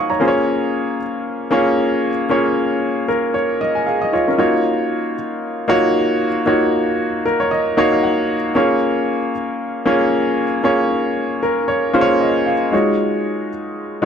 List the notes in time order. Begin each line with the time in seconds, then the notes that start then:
Already playing: A#3 D#4 F4 F#4 C5 C#5 F5 F#5 G#5 A#5 C#6 D#6
0.10 C#5 A#5
0.20 A#3 C#4 F4 G#4 C5
0.28 C#5
1.51 A#3 C#4 F4 G#4 C#5
2.29 A#3 C#4 F4 G#4 C#5
3.08 A#4
3.34 C#5
3.61 D#5
3.75 G#5
3.86 G#4 F5
4.02 D#5
4.13 F4 C#5 D#5
4.28 C#4 A#4
4.38 A#3 D#4 F4 F#4 C#5
5.68 A#3 D#4 F4 F#4 C#5
6.46 A#3 D#4 F4 F#4 C#5
7.26 A#4
7.40 C#5
7.51 D#5
7.77 A#3 D#4 F#4 C#5 F5
7.92 F5
8.03 F#5
8.55 A#3 C#4 F4 G#4 C#5
9.86 A#3 C#4 F4 G#4 C#5
10.63 A#3 C#4 F4 G#4 C#5
11.43 A#4
11.68 C#5
11.93 A#3 C#4 F4 G#4 C5 C#5
12.01 C#5
12.21 D#5
12.46 F5
12.72 G#3 D#4 F4 F#4 C#5
14.02 G#3 D#4